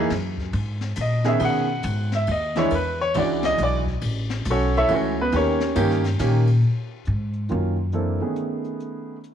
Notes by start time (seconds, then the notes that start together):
0.10 F#2, snare, ride
0.38 kick
0.53 G#2, ride
0.81 snare
0.95 A#2, hi-hat pedal, ride
1.01 D#5
1.24 D#3 B3 C#4 G#4 E5, snare
1.39 B2 D#3 B3 C#4 G#4, ride
1.45 F#5
1.83 G#2, hi-hat pedal, ride
2.12 E5, snare, ride
2.27 D#2, ride
2.31 D#5
2.56 E3 G#3 D4 E4 C#5, snare
2.70 E2 A#4, ride
2.75 B4
3.01 C#5
3.14 C#2 E3 G#3 D4 F#4, ride
3.18 D5
3.43 D#5, snare
3.58 B1, hi-hat pedal, ride
3.63 D5
3.86 kick
4.01 A1, ride
4.30 snare
4.45 B1, hi-hat pedal, ride
4.50 C#4 F#4 A4 C#5
4.73 ride
4.77 E4 A4 C#5 E5
4.88 C#2 E3 A3 C#4 F#4, ride
4.94 C#4 F#4 A4 C#5
5.21 B3 B4
5.32 D#2 D#3 A#3 C#4 G4, ride
5.36 C#4 G4 A#4 C#5
5.60 snare
5.75 G2 D#3 A#3 C#4 G4, hi-hat pedal, ride
5.91 snare
6.04 snare, ride
6.19 A#2 D#3 A#3 C#4 G4, hi-hat pedal, ride
6.47 ride
6.62 closed hi-hat
7.05 G#2, closed hi-hat
7.33 closed hi-hat
7.48 F#2 D#3 F#3 A#3 C#4 F4, closed hi-hat
7.92 E3 A#3 C4 D4 A4, closed hi-hat
8.21 D#3 A3 B3 C#4 G#4
8.36 closed hi-hat
8.64 closed hi-hat
8.80 closed hi-hat
9.24 closed hi-hat